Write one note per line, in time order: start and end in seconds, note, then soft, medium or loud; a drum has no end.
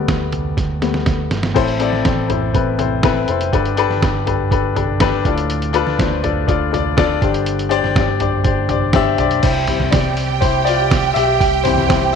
0.00 0.80 G3 soft
0.00 0.81 A3 soft
0.00 0.81 B3 medium
0.00 1.03 G4 medium
0.00 1.02 D5 medium
0.08 1.27 D2 medium
0.08 kick loud
0.08 snare medium
0.08 closed hi-hat medium
0.32 closed hi-hat medium
0.32 floor tom soft
0.57 kick medium
0.57 snare soft
0.57 closed hi-hat medium
0.82 1.04 G3 soft
0.82 1.04 A3 soft
0.82 1.04 B3 soft
0.82 snare medium
0.82 closed hi-hat medium
0.94 snare medium
1.06 kick loud
1.06 snare medium
1.06 closed hi-hat medium
1.30 1.54 G1 medium
1.30 snare medium
1.30 closed hi-hat medium
1.43 snare medium
1.54 1.90 A1 medium
1.54 2.25 A2 medium
1.54 2.25 E3 medium
1.54 1.73 C4 medium
1.54 1.74 E4 medium
1.54 1.74 A4 medium
1.54 1.74 C5 loud
1.54 kick loud
1.54 closed hi-hat medium
1.54 crash medium
1.68 closed hi-hat soft
1.79 1.98 C4 loud
1.79 1.98 E4 medium
1.79 1.99 A4 medium
1.79 1.99 D5 loud
1.79 closed hi-hat medium
1.92 2.04 A1 medium
1.92 snare soft
2.04 3.24 A1 medium
2.04 2.23 C4 medium
2.04 2.23 E4 medium
2.04 2.23 A4 medium
2.04 2.24 C5 medium
2.04 kick loud
2.04 snare medium
2.04 closed hi-hat medium
2.29 2.47 C4 medium
2.29 2.48 E4 medium
2.29 2.48 A4 medium
2.29 2.48 C5 medium
2.29 closed hi-hat medium
2.29 floor tom medium
2.53 2.72 C4 medium
2.53 2.72 E4 medium
2.53 2.73 A4 medium
2.53 2.73 B4 medium
2.53 kick medium
2.53 closed hi-hat medium
2.78 2.97 C4 medium
2.78 2.97 E4 medium
2.78 2.97 A4 medium
2.78 2.98 C5 medium
2.78 closed hi-hat medium
2.78 floor tom medium
3.03 3.22 C4 loud
3.03 3.22 E4 loud
3.03 3.22 A4 medium
3.03 3.23 B4 loud
3.03 kick loud
3.03 snare loud
3.03 closed hi-hat medium
3.28 3.51 F1 medium
3.28 3.46 C4 medium
3.28 3.46 E4 medium
3.28 3.47 A4 medium
3.28 3.47 C5 medium
3.28 closed hi-hat medium
3.41 closed hi-hat medium
3.52 3.87 G1 medium
3.52 4.23 G2 medium
3.52 4.23 D3 medium
3.52 3.71 D4 medium
3.52 3.71 G4 medium
3.52 3.71 A4 medium
3.52 3.72 B4 loud
3.52 kick loud
3.52 closed hi-hat medium
3.65 closed hi-hat soft
3.77 3.95 D4 loud
3.77 3.96 G4 medium
3.77 3.96 A4 loud
3.77 3.97 B4 loud
3.77 closed hi-hat medium
3.89 4.01 G1 medium
3.89 snare soft
4.02 5.21 G1 medium
4.02 4.20 D4 medium
4.02 4.20 G4 medium
4.02 4.21 A4 medium
4.02 4.21 B4 medium
4.02 kick loud
4.02 snare loud
4.02 closed hi-hat medium
4.26 4.44 D4 medium
4.26 4.45 G4 medium
4.26 4.45 A4 medium
4.26 4.45 B4 medium
4.26 closed hi-hat medium
4.26 floor tom medium
4.50 4.69 D4 medium
4.50 4.69 G4 medium
4.50 4.70 A4 medium
4.50 4.70 B4 medium
4.50 kick loud
4.50 closed hi-hat medium
4.75 4.94 D4 medium
4.75 4.94 G4 medium
4.75 4.94 A4 medium
4.75 4.95 B4 medium
4.75 closed hi-hat medium
4.75 floor tom medium
5.00 5.18 D4 loud
5.00 5.19 G4 loud
5.00 5.19 A4 loud
5.00 5.19 B4 loud
5.00 kick loud
5.00 snare loud
5.00 closed hi-hat medium
5.24 5.82 D2 medium
5.24 5.95 A2 medium
5.24 5.64 D4 medium
5.24 5.65 F4 medium
5.24 5.65 A4 medium
5.24 5.65 D5 medium
5.24 kick medium
5.24 closed hi-hat medium
5.38 closed hi-hat medium
5.50 closed hi-hat medium
5.62 closed hi-hat soft
5.73 5.92 D4 loud
5.73 5.92 F4 loud
5.73 5.93 A4 loud
5.73 5.93 B4 loud
5.73 closed hi-hat medium
5.87 5.98 D2 medium
5.87 snare soft
5.98 7.18 D2 medium
5.98 6.17 D4 medium
5.98 6.17 F4 medium
5.98 6.17 A4 medium
5.98 6.18 C5 medium
5.98 kick loud
5.98 snare loud
5.98 closed hi-hat medium
6.22 6.41 D4 medium
6.22 6.41 F4 medium
6.22 6.42 A4 medium
6.22 6.42 D5 medium
6.22 closed hi-hat medium
6.22 floor tom medium
6.47 6.66 D4 medium
6.47 6.66 F4 medium
6.47 6.66 A4 medium
6.47 6.67 D5 medium
6.47 kick loud
6.47 closed hi-hat medium
6.72 6.90 D4 medium
6.72 6.91 F4 medium
6.72 6.91 A4 medium
6.72 6.92 D5 loud
6.72 closed hi-hat medium
6.72 floor tom soft
6.97 7.15 D4 loud
6.97 7.16 F4 loud
6.97 7.16 A4 loud
6.97 7.16 D5 loud
6.97 kick loud
6.97 snare loud
6.97 closed hi-hat medium
7.21 7.79 G1 medium
7.21 7.92 G2 medium
7.21 7.92 D3 medium
7.21 7.61 D4 medium
7.21 7.61 G4 medium
7.21 7.62 C5 medium
7.21 7.62 D5 loud
7.21 kick medium
7.21 closed hi-hat medium
7.34 closed hi-hat medium
7.46 closed hi-hat medium
7.59 closed hi-hat soft
7.69 7.88 D4 loud
7.69 7.89 G4 loud
7.69 7.89 C5 loud
7.69 7.90 D5 loud
7.69 closed hi-hat medium
7.84 7.95 G1 loud
7.84 snare soft
7.95 9.15 G1 medium
7.95 8.14 D4 medium
7.95 8.14 G4 medium
7.95 8.14 C5 medium
7.95 8.15 D5 medium
7.95 kick loud
7.95 snare loud
7.95 closed hi-hat medium
8.20 8.38 D4 medium
8.20 8.39 G4 medium
8.20 8.39 C5 medium
8.20 8.39 D5 medium
8.20 closed hi-hat medium
8.20 floor tom medium
8.44 8.63 D4 medium
8.44 8.63 G4 medium
8.44 8.63 C5 medium
8.44 8.64 D5 medium
8.44 kick loud
8.44 closed hi-hat medium
8.69 8.88 D4 medium
8.69 8.88 G4 medium
8.69 8.88 C5 medium
8.69 8.89 D5 medium
8.69 closed hi-hat medium
8.69 floor tom medium
8.93 9.12 D4 loud
8.93 9.12 G4 loud
8.93 9.13 C5 loud
8.93 9.13 E5 loud
8.93 kick loud
8.93 snare loud
8.93 closed hi-hat medium
9.18 9.41 B1 medium
9.18 9.37 D4 medium
9.18 9.37 G4 medium
9.18 9.38 C5 medium
9.18 9.38 D5 loud
9.18 closed hi-hat medium
9.18 floor tom medium
9.31 closed hi-hat medium
9.42 9.78 C2 loud
9.42 9.67 E4 medium
9.42 12.15 G4 medium
9.42 9.94 C5 medium
9.42 12.15 G5 medium
9.42 kick loud
9.42 open hi-hat medium
9.42 crash medium
9.67 11.61 G3 medium
9.67 11.62 C4 medium
9.67 10.42 E4 medium
9.67 floor tom medium
9.67 open hi-hat medium
9.80 9.91 C2 loud
9.80 snare soft
9.91 11.12 C2 medium
9.91 10.39 G4 medium
9.91 10.38 D5 medium
9.91 kick loud
9.91 snare loud
9.91 open hi-hat medium
10.17 open hi-hat medium
10.41 10.66 E4 medium
10.41 10.67 C5 medium
10.41 kick loud
10.41 open hi-hat medium
10.65 11.13 F4 medium
10.65 11.16 D5 loud
10.65 open hi-hat medium
10.91 kick loud
10.91 snare loud
10.91 open hi-hat medium
11.14 11.39 B1 medium
11.14 11.62 G4 medium
11.14 11.65 E5 loud
11.14 open hi-hat medium
11.40 11.75 C2 loud
11.40 kick loud
11.40 open hi-hat medium
11.64 12.15 E3 medium
11.64 12.15 G3 medium
11.64 12.15 C4 medium
11.64 11.89 E4 medium
11.64 11.87 C5 medium
11.64 floor tom medium
11.64 open hi-hat medium
11.77 11.88 C2 loud
11.77 snare soft
11.89 12.15 C2 medium
11.89 12.13 E4 medium
11.89 12.14 C5 medium
11.89 kick loud
11.89 snare loud
11.89 open hi-hat medium